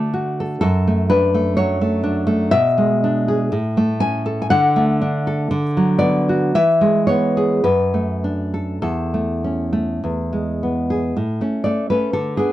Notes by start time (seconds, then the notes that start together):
Already playing: D3 A3 D4 F#4 A4 D5
0.14 F#4
0.40 A4
0.61 F#2 A4
0.88 A3
1.10 D4 B4
1.34 A3
1.57 F#3 C#5
1.81 A3
2.04 D4
2.27 A3
2.51 B2 E5
2.78 G#3
3.04 D4
3.28 G#4
3.52 A2
3.77 A3
4.00 C#4 G#5
4.26 A4
4.42 G#5
4.50 D3 F#5
4.76 A3
5.01 D4
5.27 A4
5.51 D3
5.77 F#3
5.99 B3 D5
6.29 F#4
6.55 E3 E5
6.81 G#3
7.07 B3 C#5
7.37 G#4
7.64 F#2 B4
7.94 A3
8.24 D4
8.54 A4
8.82 E2 A4
9.14 A3
9.44 C#4
9.73 A3
10.04 E2
10.33 G#3
10.63 B3
10.90 G#4
11.17 A2
11.41 A3 C#4
11.64 A3 D5
11.90 A3 C#4 B4
12.13 D3 A4
12.37 B3 D4 G#4